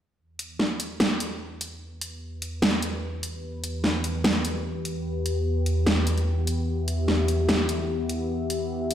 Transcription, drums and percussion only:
0, 0, Header, 1, 2, 480
1, 0, Start_track
1, 0, Key_signature, 1, "minor"
1, 0, Tempo, 405405
1, 225, Time_signature, 4, 2, 24, 8
1, 10586, End_track
2, 0, Start_track
2, 0, Title_t, "Drums"
2, 464, Note_on_c, 9, 42, 78
2, 583, Note_off_c, 9, 42, 0
2, 705, Note_on_c, 9, 38, 54
2, 823, Note_off_c, 9, 38, 0
2, 944, Note_on_c, 9, 42, 79
2, 1063, Note_off_c, 9, 42, 0
2, 1184, Note_on_c, 9, 38, 111
2, 1303, Note_off_c, 9, 38, 0
2, 1425, Note_on_c, 9, 42, 76
2, 1543, Note_off_c, 9, 42, 0
2, 1905, Note_on_c, 9, 42, 76
2, 2024, Note_off_c, 9, 42, 0
2, 2385, Note_on_c, 9, 42, 79
2, 2503, Note_off_c, 9, 42, 0
2, 2865, Note_on_c, 9, 42, 70
2, 2983, Note_off_c, 9, 42, 0
2, 3105, Note_on_c, 9, 38, 114
2, 3224, Note_off_c, 9, 38, 0
2, 3345, Note_on_c, 9, 42, 72
2, 3463, Note_off_c, 9, 42, 0
2, 3825, Note_on_c, 9, 42, 76
2, 3943, Note_off_c, 9, 42, 0
2, 4305, Note_on_c, 9, 42, 72
2, 4423, Note_off_c, 9, 42, 0
2, 4545, Note_on_c, 9, 38, 59
2, 4663, Note_off_c, 9, 38, 0
2, 4784, Note_on_c, 9, 42, 71
2, 4903, Note_off_c, 9, 42, 0
2, 5024, Note_on_c, 9, 38, 122
2, 5142, Note_off_c, 9, 38, 0
2, 5265, Note_on_c, 9, 42, 71
2, 5383, Note_off_c, 9, 42, 0
2, 5744, Note_on_c, 9, 42, 70
2, 5862, Note_off_c, 9, 42, 0
2, 6224, Note_on_c, 9, 42, 74
2, 6343, Note_off_c, 9, 42, 0
2, 6705, Note_on_c, 9, 42, 67
2, 6823, Note_off_c, 9, 42, 0
2, 6944, Note_on_c, 9, 38, 114
2, 7063, Note_off_c, 9, 38, 0
2, 7184, Note_on_c, 9, 42, 70
2, 7303, Note_off_c, 9, 42, 0
2, 7312, Note_on_c, 9, 42, 32
2, 7431, Note_off_c, 9, 42, 0
2, 7664, Note_on_c, 9, 42, 72
2, 7783, Note_off_c, 9, 42, 0
2, 8144, Note_on_c, 9, 42, 72
2, 8262, Note_off_c, 9, 42, 0
2, 8384, Note_on_c, 9, 38, 58
2, 8503, Note_off_c, 9, 38, 0
2, 8624, Note_on_c, 9, 42, 70
2, 8742, Note_off_c, 9, 42, 0
2, 8864, Note_on_c, 9, 38, 106
2, 8982, Note_off_c, 9, 38, 0
2, 9104, Note_on_c, 9, 42, 73
2, 9223, Note_off_c, 9, 42, 0
2, 9584, Note_on_c, 9, 42, 73
2, 9703, Note_off_c, 9, 42, 0
2, 10065, Note_on_c, 9, 42, 75
2, 10183, Note_off_c, 9, 42, 0
2, 10545, Note_on_c, 9, 42, 76
2, 10586, Note_off_c, 9, 42, 0
2, 10586, End_track
0, 0, End_of_file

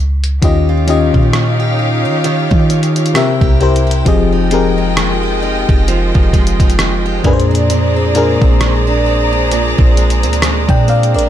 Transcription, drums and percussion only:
0, 0, Header, 1, 2, 480
1, 0, Start_track
1, 0, Key_signature, -4, "minor"
1, 0, Tempo, 909091
1, 225, Time_signature, 4, 2, 24, 8
1, 5962, End_track
2, 0, Start_track
2, 0, Title_t, "Drums"
2, 125, Note_on_c, 9, 42, 46
2, 177, Note_off_c, 9, 42, 0
2, 224, Note_on_c, 9, 36, 110
2, 224, Note_on_c, 9, 42, 72
2, 277, Note_off_c, 9, 36, 0
2, 277, Note_off_c, 9, 42, 0
2, 463, Note_on_c, 9, 42, 62
2, 516, Note_off_c, 9, 42, 0
2, 603, Note_on_c, 9, 36, 85
2, 656, Note_off_c, 9, 36, 0
2, 704, Note_on_c, 9, 37, 100
2, 704, Note_on_c, 9, 42, 56
2, 757, Note_off_c, 9, 37, 0
2, 757, Note_off_c, 9, 42, 0
2, 1184, Note_on_c, 9, 42, 59
2, 1237, Note_off_c, 9, 42, 0
2, 1327, Note_on_c, 9, 36, 83
2, 1380, Note_off_c, 9, 36, 0
2, 1425, Note_on_c, 9, 42, 52
2, 1478, Note_off_c, 9, 42, 0
2, 1494, Note_on_c, 9, 42, 53
2, 1547, Note_off_c, 9, 42, 0
2, 1563, Note_on_c, 9, 42, 54
2, 1614, Note_off_c, 9, 42, 0
2, 1614, Note_on_c, 9, 42, 53
2, 1663, Note_on_c, 9, 37, 109
2, 1667, Note_off_c, 9, 42, 0
2, 1669, Note_on_c, 9, 42, 69
2, 1716, Note_off_c, 9, 37, 0
2, 1721, Note_off_c, 9, 42, 0
2, 1802, Note_on_c, 9, 36, 87
2, 1855, Note_off_c, 9, 36, 0
2, 1904, Note_on_c, 9, 42, 35
2, 1957, Note_off_c, 9, 42, 0
2, 1985, Note_on_c, 9, 42, 46
2, 2038, Note_off_c, 9, 42, 0
2, 2065, Note_on_c, 9, 42, 63
2, 2118, Note_off_c, 9, 42, 0
2, 2144, Note_on_c, 9, 36, 111
2, 2144, Note_on_c, 9, 42, 67
2, 2197, Note_off_c, 9, 36, 0
2, 2197, Note_off_c, 9, 42, 0
2, 2382, Note_on_c, 9, 42, 61
2, 2435, Note_off_c, 9, 42, 0
2, 2624, Note_on_c, 9, 37, 99
2, 2624, Note_on_c, 9, 42, 56
2, 2676, Note_off_c, 9, 37, 0
2, 2676, Note_off_c, 9, 42, 0
2, 3004, Note_on_c, 9, 36, 90
2, 3057, Note_off_c, 9, 36, 0
2, 3104, Note_on_c, 9, 42, 61
2, 3157, Note_off_c, 9, 42, 0
2, 3248, Note_on_c, 9, 36, 86
2, 3300, Note_off_c, 9, 36, 0
2, 3344, Note_on_c, 9, 36, 83
2, 3346, Note_on_c, 9, 42, 54
2, 3397, Note_off_c, 9, 36, 0
2, 3399, Note_off_c, 9, 42, 0
2, 3415, Note_on_c, 9, 42, 55
2, 3468, Note_off_c, 9, 42, 0
2, 3484, Note_on_c, 9, 36, 95
2, 3485, Note_on_c, 9, 42, 56
2, 3535, Note_off_c, 9, 42, 0
2, 3535, Note_on_c, 9, 42, 54
2, 3536, Note_off_c, 9, 36, 0
2, 3584, Note_on_c, 9, 37, 114
2, 3588, Note_off_c, 9, 42, 0
2, 3590, Note_on_c, 9, 42, 70
2, 3637, Note_off_c, 9, 37, 0
2, 3642, Note_off_c, 9, 42, 0
2, 3825, Note_on_c, 9, 36, 98
2, 3825, Note_on_c, 9, 42, 35
2, 3877, Note_off_c, 9, 42, 0
2, 3878, Note_off_c, 9, 36, 0
2, 3905, Note_on_c, 9, 42, 50
2, 3958, Note_off_c, 9, 42, 0
2, 3986, Note_on_c, 9, 42, 58
2, 4039, Note_off_c, 9, 42, 0
2, 4065, Note_on_c, 9, 42, 72
2, 4118, Note_off_c, 9, 42, 0
2, 4303, Note_on_c, 9, 42, 61
2, 4355, Note_off_c, 9, 42, 0
2, 4444, Note_on_c, 9, 36, 88
2, 4497, Note_off_c, 9, 36, 0
2, 4544, Note_on_c, 9, 37, 102
2, 4544, Note_on_c, 9, 42, 58
2, 4597, Note_off_c, 9, 37, 0
2, 4597, Note_off_c, 9, 42, 0
2, 5024, Note_on_c, 9, 42, 59
2, 5077, Note_off_c, 9, 42, 0
2, 5167, Note_on_c, 9, 36, 82
2, 5220, Note_off_c, 9, 36, 0
2, 5266, Note_on_c, 9, 42, 53
2, 5319, Note_off_c, 9, 42, 0
2, 5334, Note_on_c, 9, 42, 52
2, 5387, Note_off_c, 9, 42, 0
2, 5403, Note_on_c, 9, 42, 52
2, 5454, Note_off_c, 9, 42, 0
2, 5454, Note_on_c, 9, 42, 52
2, 5503, Note_on_c, 9, 37, 116
2, 5507, Note_off_c, 9, 42, 0
2, 5508, Note_on_c, 9, 42, 74
2, 5556, Note_off_c, 9, 37, 0
2, 5561, Note_off_c, 9, 42, 0
2, 5643, Note_on_c, 9, 36, 85
2, 5695, Note_off_c, 9, 36, 0
2, 5745, Note_on_c, 9, 42, 34
2, 5798, Note_off_c, 9, 42, 0
2, 5826, Note_on_c, 9, 42, 47
2, 5878, Note_off_c, 9, 42, 0
2, 5906, Note_on_c, 9, 42, 61
2, 5959, Note_off_c, 9, 42, 0
2, 5962, End_track
0, 0, End_of_file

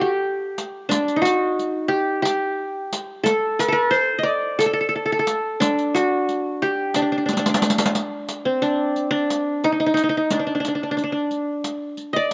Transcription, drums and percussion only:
0, 0, Header, 1, 2, 480
1, 0, Start_track
1, 0, Tempo, 671892
1, 642, Time_signature, 7, 3, 24, 8
1, 8812, End_track
2, 0, Start_track
2, 0, Title_t, "Riq"
2, 415, Note_on_c, 9, 54, 45
2, 486, Note_off_c, 9, 54, 0
2, 653, Note_on_c, 9, 54, 63
2, 724, Note_off_c, 9, 54, 0
2, 773, Note_on_c, 9, 54, 18
2, 845, Note_off_c, 9, 54, 0
2, 895, Note_on_c, 9, 54, 46
2, 967, Note_off_c, 9, 54, 0
2, 1138, Note_on_c, 9, 54, 18
2, 1210, Note_off_c, 9, 54, 0
2, 1610, Note_on_c, 9, 54, 52
2, 1681, Note_off_c, 9, 54, 0
2, 2091, Note_on_c, 9, 54, 51
2, 2162, Note_off_c, 9, 54, 0
2, 2328, Note_on_c, 9, 54, 61
2, 2399, Note_off_c, 9, 54, 0
2, 2573, Note_on_c, 9, 54, 51
2, 2644, Note_off_c, 9, 54, 0
2, 2812, Note_on_c, 9, 54, 17
2, 2883, Note_off_c, 9, 54, 0
2, 3288, Note_on_c, 9, 54, 53
2, 3360, Note_off_c, 9, 54, 0
2, 3765, Note_on_c, 9, 54, 51
2, 3837, Note_off_c, 9, 54, 0
2, 4011, Note_on_c, 9, 54, 59
2, 4083, Note_off_c, 9, 54, 0
2, 4132, Note_on_c, 9, 54, 17
2, 4204, Note_off_c, 9, 54, 0
2, 4255, Note_on_c, 9, 54, 50
2, 4326, Note_off_c, 9, 54, 0
2, 4491, Note_on_c, 9, 54, 18
2, 4563, Note_off_c, 9, 54, 0
2, 4732, Note_on_c, 9, 54, 16
2, 4804, Note_off_c, 9, 54, 0
2, 4961, Note_on_c, 9, 54, 54
2, 5032, Note_off_c, 9, 54, 0
2, 5207, Note_on_c, 9, 54, 50
2, 5266, Note_off_c, 9, 54, 0
2, 5266, Note_on_c, 9, 54, 54
2, 5330, Note_off_c, 9, 54, 0
2, 5330, Note_on_c, 9, 54, 61
2, 5389, Note_off_c, 9, 54, 0
2, 5389, Note_on_c, 9, 54, 73
2, 5445, Note_off_c, 9, 54, 0
2, 5445, Note_on_c, 9, 54, 74
2, 5502, Note_off_c, 9, 54, 0
2, 5502, Note_on_c, 9, 54, 75
2, 5562, Note_off_c, 9, 54, 0
2, 5562, Note_on_c, 9, 54, 82
2, 5613, Note_off_c, 9, 54, 0
2, 5613, Note_on_c, 9, 54, 84
2, 5681, Note_off_c, 9, 54, 0
2, 5681, Note_on_c, 9, 54, 61
2, 5752, Note_off_c, 9, 54, 0
2, 5920, Note_on_c, 9, 54, 46
2, 5992, Note_off_c, 9, 54, 0
2, 6160, Note_on_c, 9, 54, 17
2, 6232, Note_off_c, 9, 54, 0
2, 6402, Note_on_c, 9, 54, 16
2, 6473, Note_off_c, 9, 54, 0
2, 6647, Note_on_c, 9, 54, 45
2, 6719, Note_off_c, 9, 54, 0
2, 6885, Note_on_c, 9, 54, 17
2, 6956, Note_off_c, 9, 54, 0
2, 7123, Note_on_c, 9, 54, 38
2, 7195, Note_off_c, 9, 54, 0
2, 7362, Note_on_c, 9, 54, 60
2, 7433, Note_off_c, 9, 54, 0
2, 7606, Note_on_c, 9, 54, 38
2, 7677, Note_off_c, 9, 54, 0
2, 7846, Note_on_c, 9, 54, 21
2, 7917, Note_off_c, 9, 54, 0
2, 8078, Note_on_c, 9, 54, 17
2, 8150, Note_off_c, 9, 54, 0
2, 8317, Note_on_c, 9, 54, 47
2, 8388, Note_off_c, 9, 54, 0
2, 8553, Note_on_c, 9, 54, 18
2, 8624, Note_off_c, 9, 54, 0
2, 8812, End_track
0, 0, End_of_file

